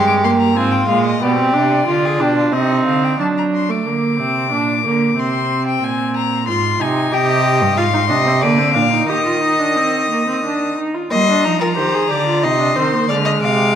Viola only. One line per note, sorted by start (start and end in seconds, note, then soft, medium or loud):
0.00 0.25 G#3 loud
0.24 0.56 A#3 medium
0.57 0.88 C4 medium
0.88 1.21 G#3 medium
1.21 1.36 B3 medium
1.37 1.55 C4 medium
1.53 1.86 D4 medium
1.86 2.21 F4 medium
2.20 2.54 D4 medium
2.52 3.19 C4 medium
3.19 3.71 D4 medium
3.69 3.88 A3 medium
3.86 4.18 A#3 medium
4.19 4.50 C4 medium
4.51 4.84 D4 medium
4.84 5.16 A#3 medium
5.17 6.45 C4 medium
6.47 6.81 F4 medium
6.80 7.14 D#4 medium
7.12 7.76 G4 medium
7.77 7.84 F4 medium
7.93 8.00 D#4 medium
8.09 8.16 D4 medium
8.26 8.33 C4 medium
8.43 8.60 A#3 medium
8.58 8.76 C4 medium
8.75 8.92 D4 medium
8.93 9.10 D#4 medium
9.09 9.25 G4 medium
9.26 9.42 F4 medium
9.43 9.61 D#4 medium
9.60 9.78 D4 medium
9.76 10.10 C4 medium
10.10 10.26 A#3 medium
10.27 10.43 C4 medium
10.45 10.77 D4 medium
10.78 10.96 D#4 medium
10.95 11.10 F4 medium
11.11 11.18 A#3 medium
11.28 11.46 D4 medium
11.45 11.60 D#4 medium
11.61 11.76 F4 medium
11.77 11.95 G4 medium
11.94 12.12 G#4 medium
12.11 12.26 G4 medium
12.26 12.45 F4 medium
12.43 12.61 D#4 medium
12.59 12.75 D4 medium
12.76 12.94 C4 medium
12.93 13.10 A#3 medium
13.09 13.75 G#3 medium